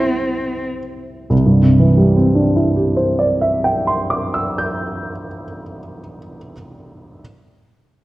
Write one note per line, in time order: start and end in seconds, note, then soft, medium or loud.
0.00 1.27 C2 soft
0.00 0.78 G3 soft
0.00 0.64 C4 soft
0.00 1.26 E4 soft
1.30 5.12 C2 soft
1.46 5.28 G2 soft
1.62 5.44 C3 soft
1.80 5.61 E3 soft
1.97 5.79 G3 soft
2.17 5.99 C4 soft
2.35 6.17 D4 soft
2.56 6.38 E4 soft
2.76 6.53 G4 soft
2.97 6.52 C5 soft
3.19 6.53 D5 soft
3.42 6.53 E5 soft
3.64 6.53 G5 soft
3.87 6.53 C6 soft
4.10 6.52 D6 soft
4.34 6.52 E6 soft
4.58 6.52 G6 soft